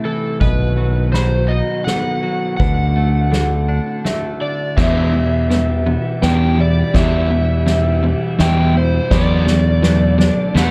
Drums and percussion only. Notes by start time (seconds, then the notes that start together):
0.41 kick
0.77 ride
1.14 snare, ride
1.87 snare, ride
2.60 kick
3.33 snare, ride
4.05 snare, ride
4.77 kick, snare, crash
5.50 snare, ride
6.22 snare, ride
6.94 kick, snare, ride
7.67 snare, ride
8.39 snare, ride
9.11 kick, snare
9.47 snare
9.83 snare, ride
10.20 snare
10.56 snare, ride